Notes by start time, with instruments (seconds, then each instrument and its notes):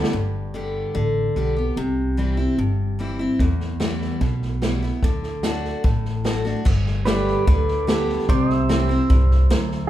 Already playing: steel-string acoustic guitar D3 G3 B3 G4, pedal steel guitar B4 D5
0.04 snare
0.13 upright bass G1, steel-string acoustic guitar G2
0.54 steel-string acoustic guitar D3 G3 B3 G4
0.95 upright bass A1, steel-string acoustic guitar D3
1.36 upright bass B1, steel-string acoustic guitar D3 G3 B3 G4
1.56 steel-string acoustic guitar B3 G4
1.77 upright bass C2, steel-string acoustic guitar C3
2.17 steel-string acoustic guitar E3 G3 C4 E4
2.37 steel-string acoustic guitar C4 E4
2.58 upright bass G1, steel-string acoustic guitar G2
2.99 steel-string acoustic guitar E3 G3 C4 E4
3.19 steel-string acoustic guitar C4 E4
3.39 upright bass E2, steel-string acoustic guitar E2, kick, snare
3.60 snare
3.80 steel-string acoustic guitar E3 G3 B3 E4, snare, hi-hat pedal
4.01 snare
4.21 upright bass B1, steel-string acoustic guitar B2, kick, snare
4.42 snare
4.62 steel-string acoustic guitar E3 G3 B3 E4, snare, hi-hat pedal
4.82 steel-string acoustic guitar B3 E4, snare
5.02 upright bass D2, steel-string acoustic guitar D3, kick, snare
5.23 snare
5.43 steel-string acoustic guitar D3 A3 D4 F#4, snare, hi-hat pedal
5.64 snare
5.84 upright bass A1, steel-string acoustic guitar A2, kick, snare
6.05 snare
6.24 steel-string acoustic guitar D3 A3 D4 F#4, snare, hi-hat pedal
6.45 steel-string acoustic guitar D4 F#4, snare
6.65 upright bass G1, steel-string acoustic guitar G2, kick, snare, crash
6.86 snare
7.05 steel-string acoustic guitar D3 G3 B3 G4, pedal steel guitar B4 D5, snare, hi-hat pedal
7.27 snare
7.47 upright bass D2, steel-string acoustic guitar D3, kick, snare
7.68 snare
7.87 steel-string acoustic guitar D3 G3 B3 G4, snare, hi-hat pedal
8.09 snare
8.19 snare
8.29 upright bass C2, steel-string acoustic guitar C3, pedal steel guitar C5 D5, kick, snare
8.50 snare
8.54 pedal steel guitar E5
8.69 steel-string acoustic guitar E3 G3 C4 E4, snare, hi-hat pedal
8.89 steel-string acoustic guitar C4 E4, snare
9.10 upright bass C2, steel-string acoustic guitar G2, kick, snare
9.31 snare
9.50 upright bass D2, steel-string acoustic guitar F#2, snare, hi-hat pedal
9.71 snare